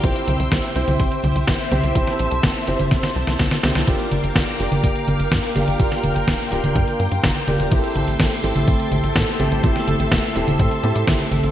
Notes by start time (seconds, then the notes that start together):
Already playing: G5
0.04 C2 C4 E4 G4 C5 E5 E6, kick, closed hi-hat
0.16 closed hi-hat
0.28 C2, closed hi-hat, high conga
0.40 C2, closed hi-hat
0.52 C2, kick, snare, closed hi-hat
0.64 closed hi-hat
0.76 C2 C4 E4 G4 C5, closed hi-hat
0.88 C2, closed hi-hat, high conga
1.00 C2, kick, closed hi-hat
1.12 closed hi-hat
1.24 C2, closed hi-hat, high conga
1.36 C2, closed hi-hat
1.48 G1, kick, snare, closed hi-hat
1.60 closed hi-hat
1.72 C2 C4 E4 G4 C5, closed hi-hat, high conga
1.83 C2, closed hi-hat
1.95 C2 C4 E4 G4 C5 A5, kick, closed hi-hat
2.07 snare, closed hi-hat
2.19 A#1, closed hi-hat
2.31 C2, closed hi-hat
2.43 G1, kick, snare, closed hi-hat
2.55 closed hi-hat
2.67 G1 C4 E4 G4 C5, closed hi-hat
2.79 G1, closed hi-hat, high conga
2.91 G1, kick, snare, closed hi-hat
3.03 snare, closed hi-hat
3.15 C2, closed hi-hat
3.27 C2, snare, closed hi-hat
3.39 C2, kick, snare, closed hi-hat, high conga
3.51 snare, closed hi-hat
3.63 C2 C4 E4 G4 C5, snare, closed hi-hat, high conga
3.75 C2, snare, closed hi-hat
3.87 G1 A#3 D4 F4 G4 A#4 F5 G5 D6, kick, closed hi-hat
4.00 closed hi-hat
4.12 G1, closed hi-hat, high conga
4.24 G1, closed hi-hat
4.36 G1, kick, snare, closed hi-hat
4.48 closed hi-hat
4.60 G1 A#3 D4 F4 G4, closed hi-hat
4.72 G1, closed hi-hat, high conga
4.84 G1, kick, closed hi-hat
4.96 closed hi-hat
5.08 G1, closed hi-hat, high conga
5.20 G1, closed hi-hat
5.32 G2, kick, snare, closed hi-hat
5.44 closed hi-hat
5.56 G1 A#3 D4 F4 G4, closed hi-hat, high conga
5.68 G1, closed hi-hat
5.79 G1 A#3 D4 F4 G4 C6, kick, closed hi-hat
5.92 snare, closed hi-hat
6.04 F1, closed hi-hat, high conga
6.16 G1, closed hi-hat
6.28 D1, kick, snare, closed hi-hat
6.40 closed hi-hat
6.52 D1 A#3 D4 F4 G4, closed hi-hat
6.64 D1, closed hi-hat, high conga
6.76 G2, kick, closed hi-hat
6.88 closed hi-hat
7.00 G2, closed hi-hat
7.12 G2, closed hi-hat
7.24 F1, kick, snare, closed hi-hat, high conga
7.36 closed hi-hat
7.48 F1 A#3 D4 F4 G4, closed hi-hat, high conga
7.60 F1, closed hi-hat
7.71 A1 A3 C4 E4 G4 A4 E5, kick, closed hi-hat
7.84 closed hi-hat
7.96 A1, closed hi-hat, high conga
8.08 A1, closed hi-hat
8.20 A1, kick, snare, closed hi-hat
8.32 closed hi-hat
8.44 A1 A3 C4 E4 G4, closed hi-hat
8.56 A1, closed hi-hat, high conga
8.68 A1, kick, closed hi-hat
8.80 closed hi-hat
8.92 A1, closed hi-hat, high conga
9.04 A1, closed hi-hat
9.16 A2, kick, snare, closed hi-hat
9.28 closed hi-hat
9.40 A1 A3 C4 E4 G4, closed hi-hat, high conga
9.52 A1, closed hi-hat
9.64 A1 A3 C4 E4 G4 A5, kick, closed hi-hat
9.76 snare, closed hi-hat
9.88 G1, closed hi-hat, high conga
10.00 A1, closed hi-hat
10.12 E1, kick, snare, closed hi-hat
10.24 closed hi-hat
10.36 E1 A3 C4 E4 G4, closed hi-hat
10.48 E1, closed hi-hat, high conga
10.59 A2, kick, closed hi-hat
10.71 closed hi-hat
10.83 A2 A3 C4 E4 G4, closed hi-hat
10.96 A2, closed hi-hat
11.08 A1, kick, snare, closed hi-hat, high conga
11.20 closed hi-hat
11.31 A1, closed hi-hat, high conga
11.44 A1, closed hi-hat